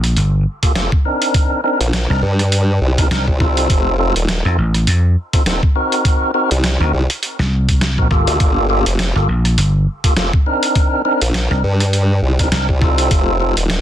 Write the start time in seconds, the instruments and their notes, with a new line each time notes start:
Already playing: slap bass A#1
0.04 cross-stick, closed hi-hat
0.17 slap bass G1, closed hi-hat
0.63 tonewheel organ A#3 F4 G4 A4, kick, closed hi-hat
0.75 wobble bass F1, tonewheel organ A#3 F4 G4 A4, snare, closed hi-hat
0.92 kick
1.05 tonewheel organ C4 D4 D#4 A#4
1.22 closed hi-hat
1.34 kick, closed hi-hat
1.64 tonewheel organ C4 D4 D#4 A#4
1.80 wobble bass A#1, closed hi-hat
1.93 snare, closed hi-hat
2.10 slap bass C2, tonewheel organ C4 D4 D#4 A#4, cross-stick
2.13 cross-stick
2.16 cross-stick
2.20 wobble bass G2, cross-stick
2.23 cross-stick
2.27 cross-stick
2.31 cross-stick
2.35 cross-stick
2.39 cross-stick, closed hi-hat
2.52 closed hi-hat
2.81 wobble bass C2
2.98 tonewheel organ C4 D4 D#4 A#4, kick, closed hi-hat
3.11 slap bass C2, tonewheel organ C4 D4 D#4 A#4, snare, closed hi-hat
3.28 wobble bass C2, kick
3.40 tonewheel organ C4 D#4 F4 A4, kick, cross-stick
3.57 closed hi-hat
3.70 wobble bass F1, kick, closed hi-hat
3.99 tonewheel organ C4 D#4 F4 A4
4.16 wobble bass D#1, closed hi-hat
4.29 snare, closed hi-hat
4.45 slap bass F2, tonewheel organ C4 D#4 F4 A4, cross-stick
4.58 slap bass A1
4.74 cross-stick, closed hi-hat
4.87 slap bass F2, closed hi-hat
5.33 tonewheel organ C4 D#4 F4 A4, kick, closed hi-hat
5.46 wobble bass D#1, tonewheel organ C4 D#4 F4 A4, snare, closed hi-hat
5.63 kick
5.76 tonewheel organ C4 D#4 F#4 A#4
5.92 closed hi-hat
6.05 kick, closed hi-hat
6.34 tonewheel organ C4 D#4 F#4 A#4
6.51 wobble bass C2, closed hi-hat
6.64 snare, closed hi-hat
6.80 slap bass D2, tonewheel organ C4 D#4 F#4 A#4, cross-stick
6.93 wobble bass C2
7.10 cross-stick, closed hi-hat
7.23 closed hi-hat
7.39 slap bass C2, snare
7.69 kick, closed hi-hat
7.81 snare, closed hi-hat
7.98 tonewheel organ C4 D#4 F#4 A#4, kick
8.11 tonewheel organ A#3 F4 G4 A4, kick, cross-stick
8.27 wobble bass D2, closed hi-hat
8.40 wobble bass G1, kick, closed hi-hat
8.70 tonewheel organ A#3 F4 G4 A4
8.86 wobble bass F1, closed hi-hat
8.99 snare, closed hi-hat
9.16 slap bass G1, tonewheel organ A#3 F4 G4 A4, cross-stick
9.28 slap bass A#1
9.45 cross-stick, closed hi-hat
9.58 slap bass G1, closed hi-hat
10.04 tonewheel organ A#3 F4 G4 A4, kick, closed hi-hat
10.17 wobble bass F1, tonewheel organ A#3 F4 G4 A4, snare, closed hi-hat
10.33 kick
10.46 tonewheel organ C4 D4 D#4 A#4
10.63 closed hi-hat
10.75 kick, closed hi-hat
11.05 tonewheel organ C4 D4 D#4 A#4
11.21 wobble bass A#1, closed hi-hat
11.34 snare, closed hi-hat
11.51 slap bass C2, tonewheel organ C4 D4 D#4 A#4, cross-stick
11.64 wobble bass G2
11.80 cross-stick, closed hi-hat
11.93 closed hi-hat
12.22 wobble bass C2
12.39 tonewheel organ C4 D4 D#4 A#4, kick, closed hi-hat
12.52 slap bass C2, tonewheel organ C4 D4 D#4 A#4, snare, closed hi-hat
12.69 wobble bass C2, kick
12.82 tonewheel organ C4 D#4 F4 A4, kick, cross-stick
12.98 closed hi-hat
13.11 wobble bass F1, kick, closed hi-hat
13.40 tonewheel organ C4 D#4 F4 A4
13.57 wobble bass D#1, closed hi-hat
13.70 snare, closed hi-hat